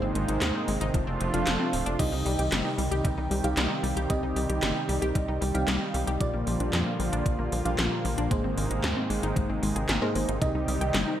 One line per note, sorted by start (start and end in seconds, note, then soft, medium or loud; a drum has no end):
0.00 0.13 G#1 medium
0.00 0.93 G#2 loud
0.00 1.97 C3 medium
0.00 0.93 D#3 medium
0.00 0.93 G#3 medium
0.00 0.93 A#3 medium
0.00 0.06 C4 medium
0.00 0.93 D#4 medium
0.00 0.93 G#4 medium
0.00 0.93 C5 loud
0.15 0.26 G#1 loud
0.15 0.20 G#3 medium
0.15 closed hi-hat medium
0.28 0.39 G#1 medium
0.28 0.33 D#4 medium
0.28 closed hi-hat medium
0.41 0.52 D#2 loud
0.41 0.49 G#3 medium
0.41 snare loud
0.41 clap loud
0.41 closed hi-hat medium
0.55 0.62 C4 medium
0.68 0.78 G#1 medium
0.68 0.79 G#3 medium
0.68 open hi-hat medium
0.81 0.92 G#1 medium
0.81 0.85 D#4 loud
0.81 closed hi-hat medium
0.94 1.05 F1 loud
0.94 1.98 F3 medium
0.94 1.02 F3 medium
0.94 1.98 A3 medium
0.94 1.98 D4 medium
0.94 1.98 F4 medium
0.94 kick loud
0.94 closed hi-hat medium
1.07 1.18 F1 medium
1.07 1.12 C4 medium
1.20 1.31 F1 medium
1.20 1.25 F3 medium
1.20 closed hi-hat medium
1.34 1.44 F1 medium
1.34 1.96 F3 medium
1.34 1.96 C4 medium
1.34 1.38 D4 medium
1.34 1.96 F4 medium
1.34 1.96 A4 medium
1.34 1.96 F5 loud
1.34 closed hi-hat medium
1.47 1.57 F1 loud
1.47 1.54 F3 medium
1.47 snare loud
1.47 clap loud
1.47 closed hi-hat loud
1.60 1.67 C4 medium
1.73 1.84 D1 loud
1.73 1.84 F3 medium
1.73 open hi-hat medium
1.86 1.97 F1 medium
1.86 1.91 D4 loud
1.86 closed hi-hat medium
1.99 2.10 C2 loud
1.99 6.16 C3 medium
1.99 3.28 C3 loud
1.99 6.16 D#3 medium
1.99 8.27 G3 medium
1.99 2.07 G3 medium
1.99 3.28 C4 medium
1.99 6.16 D#4 medium
1.99 3.28 D#4 medium
1.99 6.16 G4 medium
1.99 3.28 G4 medium
1.99 3.28 D#5 loud
1.99 kick loud
1.99 closed hi-hat medium
1.99 crash loud
2.12 2.23 C2 medium
2.12 2.17 D#4 medium
2.26 2.36 C2 loud
2.26 2.30 G3 medium
2.26 open hi-hat medium
2.39 2.49 C2 medium
2.39 2.43 G4 medium
2.39 closed hi-hat medium
2.52 2.63 G1 loud
2.52 2.59 G3 medium
2.52 snare loud
2.52 clap loud
2.52 closed hi-hat loud
2.65 2.72 D#4 medium
2.78 2.89 C2 medium
2.78 2.89 G3 medium
2.78 open hi-hat medium
2.91 3.02 C2 medium
2.91 2.96 G4 loud
2.91 closed hi-hat medium
3.05 3.15 C2 loud
3.05 3.12 G3 medium
3.05 kick loud
3.05 closed hi-hat medium
3.18 3.28 C2 medium
3.18 3.22 D#4 medium
3.31 3.41 C2 loud
3.31 3.35 G3 medium
3.31 open hi-hat medium
3.44 3.55 C2 medium
3.44 4.07 C3 medium
3.44 4.07 C4 medium
3.44 4.07 D#4 medium
3.44 3.49 G4 medium
3.44 4.07 G4 medium
3.44 4.07 F5 medium
3.44 closed hi-hat medium
3.57 3.68 C2 loud
3.57 3.65 G3 medium
3.57 snare loud
3.57 clap loud
3.57 closed hi-hat loud
3.70 3.78 D#4 medium
3.83 3.94 C2 loud
3.83 3.95 G3 medium
3.83 open hi-hat medium
3.96 4.07 C2 medium
3.96 4.01 G4 loud
3.96 closed hi-hat medium
4.10 4.20 C2 loud
4.10 5.38 C3 loud
4.10 4.17 G3 medium
4.10 5.38 C4 medium
4.10 5.38 D#4 medium
4.10 5.38 G4 loud
4.10 5.38 D#5 loud
4.10 kick loud
4.10 closed hi-hat loud
4.23 4.33 C2 medium
4.23 4.28 D#4 medium
4.36 4.47 C2 loud
4.36 4.41 G3 medium
4.36 open hi-hat medium
4.49 4.60 C2 medium
4.49 4.54 G4 medium
4.49 closed hi-hat medium
4.63 4.73 G1 loud
4.63 4.70 G3 medium
4.63 snare loud
4.63 clap loud
4.63 closed hi-hat loud
4.76 4.83 D#4 medium
4.89 4.99 C2 medium
4.89 5.00 G3 medium
4.89 open hi-hat medium
5.02 5.13 C2 medium
5.02 5.06 G4 loud
5.02 closed hi-hat medium
5.15 5.26 C2 loud
5.15 5.23 G3 medium
5.15 kick loud
5.15 closed hi-hat loud
5.28 5.39 C2 medium
5.28 5.33 D#4 medium
5.41 5.52 C2 loud
5.41 5.46 G3 medium
5.41 open hi-hat medium
5.55 5.65 C2 medium
5.55 6.17 C3 medium
5.55 6.17 C4 medium
5.55 6.17 D#4 medium
5.55 5.59 G4 medium
5.55 6.17 G4 medium
5.55 6.17 F5 loud
5.55 closed hi-hat medium
5.68 5.78 C2 loud
5.68 5.75 G3 medium
5.68 snare loud
5.68 clap loud
5.68 closed hi-hat loud
5.81 5.88 D#4 medium
5.94 6.05 C2 loud
5.94 6.05 G3 medium
5.94 open hi-hat medium
6.07 6.18 C2 medium
6.07 6.12 G4 loud
6.07 closed hi-hat medium
6.20 6.31 A#1 loud
6.20 7.49 A#2 loud
6.20 8.29 D3 medium
6.20 8.29 F3 medium
6.20 6.28 F3 medium
6.20 10.37 A#3 medium
6.20 7.49 A#3 medium
6.20 8.29 F4 loud
6.20 7.49 F4 medium
6.20 7.49 G4 medium
6.20 7.49 D5 loud
6.20 kick loud
6.20 closed hi-hat medium
6.34 6.44 A#1 medium
6.34 6.38 A#3 medium
6.47 6.57 A#1 loud
6.47 6.51 F3 medium
6.47 open hi-hat medium
6.60 6.70 A#1 medium
6.60 6.64 D4 medium
6.60 closed hi-hat medium
6.73 6.84 F2 loud
6.73 6.81 F3 medium
6.73 snare loud
6.73 clap medium
6.73 closed hi-hat medium
6.86 6.94 A#3 medium
6.99 7.10 A#1 medium
6.99 7.10 F3 medium
6.99 open hi-hat medium
7.13 7.23 A#1 medium
7.13 7.17 D4 loud
7.13 closed hi-hat medium
7.26 7.36 A#1 loud
7.26 7.33 F3 medium
7.26 kick loud
7.26 closed hi-hat medium
7.39 7.50 A#1 medium
7.39 7.43 A#3 medium
7.52 7.63 A#1 loud
7.52 7.57 F3 medium
7.52 open hi-hat medium
7.65 7.76 A#1 medium
7.65 8.28 A#2 medium
7.65 8.28 A#3 medium
7.65 7.70 D4 medium
7.65 8.28 F4 medium
7.65 8.28 G4 medium
7.65 8.28 F5 loud
7.65 closed hi-hat medium
7.78 7.89 A#1 loud
7.78 7.86 F3 medium
7.78 snare loud
7.78 clap loud
7.78 closed hi-hat loud
7.92 7.99 A#3 medium
8.05 8.15 A#1 loud
8.05 8.16 F3 medium
8.05 open hi-hat medium
8.18 8.28 A#1 medium
8.18 8.22 D4 loud
8.18 closed hi-hat medium
8.31 8.42 G#1 loud
8.31 9.59 G#2 loud
8.31 11.20 C3 medium
8.31 10.40 D#3 medium
8.31 8.38 G#3 medium
8.31 10.39 G#3 medium
8.31 9.59 A#3 medium
8.31 11.20 D#4 medium
8.31 9.60 D#4 medium
8.31 9.59 G#4 medium
8.31 9.60 C5 loud
8.31 kick loud
8.31 closed hi-hat medium
8.44 8.55 G#1 medium
8.44 8.49 C4 medium
8.57 8.68 G#1 loud
8.57 8.62 G#3 medium
8.57 open hi-hat medium
8.71 8.81 G#1 medium
8.71 8.75 D#4 medium
8.71 closed hi-hat medium
8.84 8.94 D#2 loud
8.84 8.91 G#3 medium
8.84 snare loud
8.84 clap medium
8.84 closed hi-hat medium
8.97 9.04 C4 medium
9.10 9.20 G#1 medium
9.10 9.21 G#3 medium
9.10 open hi-hat medium
9.23 9.34 G#1 medium
9.23 9.28 D#4 loud
9.23 closed hi-hat medium
9.36 9.47 G#1 loud
9.36 9.44 G#3 medium
9.36 kick loud
9.36 closed hi-hat medium
9.49 9.60 G#1 medium
9.49 9.54 C4 medium
9.62 9.73 G#1 loud
9.62 9.70 G#3 medium
9.62 open hi-hat medium
9.76 9.86 G#1 medium
9.76 9.83 G#4 medium
9.76 closed hi-hat medium
9.89 9.99 G#1 loud
9.89 9.96 G#4 medium
9.89 snare loud
9.89 clap medium
9.89 closed hi-hat medium
10.02 10.12 G#2 loud
10.02 10.12 A#3 medium
10.02 10.12 D#4 medium
10.02 10.12 G#4 medium
10.02 10.09 A#4 loud
10.02 10.12 C5 loud
10.15 10.26 G#1 loud
10.15 10.20 G#3 medium
10.15 10.31 A#3 loud
10.15 10.31 D#4 medium
10.15 10.31 G#4 medium
10.15 10.31 C5 loud
10.15 open hi-hat medium
10.28 10.39 G#1 medium
10.28 10.40 D#4 medium
10.28 closed hi-hat medium
10.41 10.52 C2 loud
10.41 11.20 C3 loud
10.41 11.20 D#3 medium
10.41 10.49 G3 medium
10.41 11.20 G3 medium
10.41 11.20 C4 medium
10.41 11.20 D#4 medium
10.41 11.20 G4 medium
10.41 11.20 D#5 loud
10.41 kick loud
10.41 closed hi-hat medium
10.55 10.65 C2 medium
10.55 10.59 D#4 medium
10.68 10.78 C2 loud
10.68 10.72 G3 medium
10.68 open hi-hat medium
10.81 10.92 C2 medium
10.81 10.92 G5 medium
10.81 closed hi-hat medium
10.94 11.05 G1 loud
10.94 11.02 G3 medium
10.94 snare loud
10.94 clap loud
10.94 closed hi-hat medium
11.08 11.15 D#4 medium